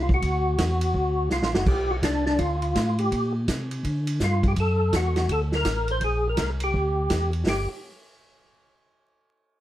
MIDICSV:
0, 0, Header, 1, 4, 480
1, 0, Start_track
1, 0, Tempo, 362100
1, 292, Time_signature, 4, 2, 24, 8
1, 12730, End_track
2, 0, Start_track
2, 0, Title_t, "Tonewheel organ"
2, 0, Program_c, 0, 16
2, 32, Note_on_c, 0, 65, 64
2, 133, Note_off_c, 0, 65, 0
2, 185, Note_on_c, 0, 66, 87
2, 1713, Note_off_c, 0, 66, 0
2, 1756, Note_on_c, 0, 65, 87
2, 2050, Note_on_c, 0, 66, 84
2, 2058, Note_off_c, 0, 65, 0
2, 2220, Note_on_c, 0, 67, 82
2, 2224, Note_off_c, 0, 66, 0
2, 2528, Note_on_c, 0, 66, 93
2, 2530, Note_off_c, 0, 67, 0
2, 2605, Note_off_c, 0, 66, 0
2, 2706, Note_on_c, 0, 62, 81
2, 2983, Note_off_c, 0, 62, 0
2, 3003, Note_on_c, 0, 62, 85
2, 3165, Note_on_c, 0, 65, 88
2, 3181, Note_off_c, 0, 62, 0
2, 3966, Note_on_c, 0, 67, 72
2, 3977, Note_off_c, 0, 65, 0
2, 4409, Note_off_c, 0, 67, 0
2, 5621, Note_on_c, 0, 65, 77
2, 5910, Note_off_c, 0, 65, 0
2, 5936, Note_on_c, 0, 67, 69
2, 6001, Note_off_c, 0, 67, 0
2, 6097, Note_on_c, 0, 69, 76
2, 6568, Note_off_c, 0, 69, 0
2, 6574, Note_on_c, 0, 66, 83
2, 7047, Note_off_c, 0, 66, 0
2, 7050, Note_on_c, 0, 69, 89
2, 7179, Note_off_c, 0, 69, 0
2, 7358, Note_on_c, 0, 70, 106
2, 7831, Note_off_c, 0, 70, 0
2, 7838, Note_on_c, 0, 72, 87
2, 7997, Note_off_c, 0, 72, 0
2, 8010, Note_on_c, 0, 68, 78
2, 8319, Note_off_c, 0, 68, 0
2, 8342, Note_on_c, 0, 70, 89
2, 8616, Note_off_c, 0, 70, 0
2, 8798, Note_on_c, 0, 67, 80
2, 9683, Note_off_c, 0, 67, 0
2, 9926, Note_on_c, 0, 67, 64
2, 10192, Note_off_c, 0, 67, 0
2, 12730, End_track
3, 0, Start_track
3, 0, Title_t, "Tonewheel organ"
3, 0, Program_c, 1, 16
3, 0, Note_on_c, 1, 36, 91
3, 280, Note_off_c, 1, 36, 0
3, 294, Note_on_c, 1, 38, 86
3, 759, Note_off_c, 1, 38, 0
3, 774, Note_on_c, 1, 40, 93
3, 1239, Note_off_c, 1, 40, 0
3, 1252, Note_on_c, 1, 38, 72
3, 1718, Note_off_c, 1, 38, 0
3, 1727, Note_on_c, 1, 36, 88
3, 1873, Note_on_c, 1, 33, 56
3, 1885, Note_off_c, 1, 36, 0
3, 2037, Note_on_c, 1, 30, 64
3, 2043, Note_off_c, 1, 33, 0
3, 2193, Note_off_c, 1, 30, 0
3, 2202, Note_on_c, 1, 35, 89
3, 2673, Note_off_c, 1, 35, 0
3, 2688, Note_on_c, 1, 36, 80
3, 3156, Note_off_c, 1, 36, 0
3, 3166, Note_on_c, 1, 38, 73
3, 3635, Note_off_c, 1, 38, 0
3, 3652, Note_on_c, 1, 45, 91
3, 4118, Note_off_c, 1, 45, 0
3, 4135, Note_on_c, 1, 46, 79
3, 4600, Note_off_c, 1, 46, 0
3, 4612, Note_on_c, 1, 48, 87
3, 5078, Note_off_c, 1, 48, 0
3, 5096, Note_on_c, 1, 50, 81
3, 5560, Note_off_c, 1, 50, 0
3, 5567, Note_on_c, 1, 43, 91
3, 6035, Note_off_c, 1, 43, 0
3, 6048, Note_on_c, 1, 42, 86
3, 6516, Note_off_c, 1, 42, 0
3, 6531, Note_on_c, 1, 40, 83
3, 6997, Note_off_c, 1, 40, 0
3, 7014, Note_on_c, 1, 38, 82
3, 7478, Note_off_c, 1, 38, 0
3, 7490, Note_on_c, 1, 33, 87
3, 7956, Note_off_c, 1, 33, 0
3, 7965, Note_on_c, 1, 34, 90
3, 8433, Note_off_c, 1, 34, 0
3, 8452, Note_on_c, 1, 36, 80
3, 8917, Note_off_c, 1, 36, 0
3, 8934, Note_on_c, 1, 38, 77
3, 9398, Note_off_c, 1, 38, 0
3, 9413, Note_on_c, 1, 40, 81
3, 9877, Note_off_c, 1, 40, 0
3, 9883, Note_on_c, 1, 31, 81
3, 10169, Note_off_c, 1, 31, 0
3, 12730, End_track
4, 0, Start_track
4, 0, Title_t, "Drums"
4, 120, Note_on_c, 9, 36, 53
4, 253, Note_off_c, 9, 36, 0
4, 294, Note_on_c, 9, 36, 23
4, 295, Note_on_c, 9, 51, 56
4, 427, Note_off_c, 9, 36, 0
4, 428, Note_off_c, 9, 51, 0
4, 772, Note_on_c, 9, 36, 21
4, 774, Note_on_c, 9, 44, 54
4, 774, Note_on_c, 9, 51, 73
4, 776, Note_on_c, 9, 38, 71
4, 904, Note_off_c, 9, 36, 0
4, 906, Note_off_c, 9, 44, 0
4, 906, Note_off_c, 9, 51, 0
4, 909, Note_off_c, 9, 38, 0
4, 1075, Note_on_c, 9, 51, 61
4, 1207, Note_off_c, 9, 51, 0
4, 1249, Note_on_c, 9, 36, 24
4, 1381, Note_off_c, 9, 36, 0
4, 1728, Note_on_c, 9, 44, 47
4, 1730, Note_on_c, 9, 38, 46
4, 1860, Note_off_c, 9, 44, 0
4, 1863, Note_off_c, 9, 38, 0
4, 1890, Note_on_c, 9, 38, 60
4, 2022, Note_off_c, 9, 38, 0
4, 2047, Note_on_c, 9, 38, 78
4, 2180, Note_off_c, 9, 38, 0
4, 2204, Note_on_c, 9, 49, 70
4, 2205, Note_on_c, 9, 36, 65
4, 2337, Note_off_c, 9, 36, 0
4, 2337, Note_off_c, 9, 49, 0
4, 2686, Note_on_c, 9, 36, 21
4, 2687, Note_on_c, 9, 44, 50
4, 2687, Note_on_c, 9, 51, 71
4, 2689, Note_on_c, 9, 38, 64
4, 2819, Note_off_c, 9, 36, 0
4, 2819, Note_off_c, 9, 44, 0
4, 2819, Note_off_c, 9, 51, 0
4, 2822, Note_off_c, 9, 38, 0
4, 2996, Note_on_c, 9, 38, 35
4, 3128, Note_off_c, 9, 38, 0
4, 3162, Note_on_c, 9, 51, 55
4, 3166, Note_on_c, 9, 36, 23
4, 3295, Note_off_c, 9, 51, 0
4, 3299, Note_off_c, 9, 36, 0
4, 3472, Note_on_c, 9, 51, 43
4, 3605, Note_off_c, 9, 51, 0
4, 3650, Note_on_c, 9, 36, 23
4, 3651, Note_on_c, 9, 44, 45
4, 3651, Note_on_c, 9, 51, 63
4, 3654, Note_on_c, 9, 38, 59
4, 3782, Note_off_c, 9, 36, 0
4, 3784, Note_off_c, 9, 44, 0
4, 3784, Note_off_c, 9, 51, 0
4, 3787, Note_off_c, 9, 38, 0
4, 3956, Note_on_c, 9, 51, 43
4, 4089, Note_off_c, 9, 51, 0
4, 4132, Note_on_c, 9, 36, 20
4, 4134, Note_on_c, 9, 51, 56
4, 4265, Note_off_c, 9, 36, 0
4, 4266, Note_off_c, 9, 51, 0
4, 4611, Note_on_c, 9, 44, 63
4, 4611, Note_on_c, 9, 51, 60
4, 4612, Note_on_c, 9, 36, 21
4, 4613, Note_on_c, 9, 38, 60
4, 4743, Note_off_c, 9, 44, 0
4, 4743, Note_off_c, 9, 51, 0
4, 4745, Note_off_c, 9, 36, 0
4, 4746, Note_off_c, 9, 38, 0
4, 4918, Note_on_c, 9, 51, 47
4, 5050, Note_off_c, 9, 51, 0
4, 5095, Note_on_c, 9, 36, 19
4, 5096, Note_on_c, 9, 51, 53
4, 5228, Note_off_c, 9, 36, 0
4, 5228, Note_off_c, 9, 51, 0
4, 5395, Note_on_c, 9, 51, 64
4, 5528, Note_off_c, 9, 51, 0
4, 5567, Note_on_c, 9, 44, 61
4, 5569, Note_on_c, 9, 38, 61
4, 5572, Note_on_c, 9, 36, 17
4, 5699, Note_off_c, 9, 44, 0
4, 5702, Note_off_c, 9, 38, 0
4, 5705, Note_off_c, 9, 36, 0
4, 5877, Note_on_c, 9, 36, 49
4, 5879, Note_on_c, 9, 51, 42
4, 6010, Note_off_c, 9, 36, 0
4, 6011, Note_off_c, 9, 51, 0
4, 6047, Note_on_c, 9, 51, 60
4, 6050, Note_on_c, 9, 36, 21
4, 6180, Note_off_c, 9, 51, 0
4, 6183, Note_off_c, 9, 36, 0
4, 6531, Note_on_c, 9, 44, 66
4, 6531, Note_on_c, 9, 51, 59
4, 6532, Note_on_c, 9, 36, 19
4, 6534, Note_on_c, 9, 38, 59
4, 6664, Note_off_c, 9, 36, 0
4, 6664, Note_off_c, 9, 44, 0
4, 6664, Note_off_c, 9, 51, 0
4, 6667, Note_off_c, 9, 38, 0
4, 6837, Note_on_c, 9, 51, 41
4, 6840, Note_on_c, 9, 38, 46
4, 6970, Note_off_c, 9, 51, 0
4, 6973, Note_off_c, 9, 38, 0
4, 7013, Note_on_c, 9, 36, 17
4, 7013, Note_on_c, 9, 51, 54
4, 7145, Note_off_c, 9, 36, 0
4, 7146, Note_off_c, 9, 51, 0
4, 7317, Note_on_c, 9, 38, 46
4, 7449, Note_off_c, 9, 38, 0
4, 7486, Note_on_c, 9, 44, 51
4, 7486, Note_on_c, 9, 51, 65
4, 7488, Note_on_c, 9, 38, 59
4, 7492, Note_on_c, 9, 36, 25
4, 7618, Note_off_c, 9, 44, 0
4, 7618, Note_off_c, 9, 51, 0
4, 7621, Note_off_c, 9, 38, 0
4, 7624, Note_off_c, 9, 36, 0
4, 7791, Note_on_c, 9, 51, 42
4, 7924, Note_off_c, 9, 51, 0
4, 7963, Note_on_c, 9, 51, 50
4, 7970, Note_on_c, 9, 36, 19
4, 8096, Note_off_c, 9, 51, 0
4, 8103, Note_off_c, 9, 36, 0
4, 8443, Note_on_c, 9, 44, 56
4, 8443, Note_on_c, 9, 51, 69
4, 8446, Note_on_c, 9, 38, 57
4, 8452, Note_on_c, 9, 36, 21
4, 8575, Note_off_c, 9, 44, 0
4, 8575, Note_off_c, 9, 51, 0
4, 8578, Note_off_c, 9, 38, 0
4, 8585, Note_off_c, 9, 36, 0
4, 8750, Note_on_c, 9, 51, 61
4, 8882, Note_off_c, 9, 51, 0
4, 8931, Note_on_c, 9, 36, 26
4, 9064, Note_off_c, 9, 36, 0
4, 9409, Note_on_c, 9, 44, 56
4, 9409, Note_on_c, 9, 51, 64
4, 9412, Note_on_c, 9, 38, 57
4, 9414, Note_on_c, 9, 36, 23
4, 9542, Note_off_c, 9, 44, 0
4, 9542, Note_off_c, 9, 51, 0
4, 9544, Note_off_c, 9, 38, 0
4, 9546, Note_off_c, 9, 36, 0
4, 9716, Note_on_c, 9, 51, 37
4, 9849, Note_off_c, 9, 51, 0
4, 9896, Note_on_c, 9, 38, 84
4, 9896, Note_on_c, 9, 46, 68
4, 10029, Note_off_c, 9, 38, 0
4, 10029, Note_off_c, 9, 46, 0
4, 12730, End_track
0, 0, End_of_file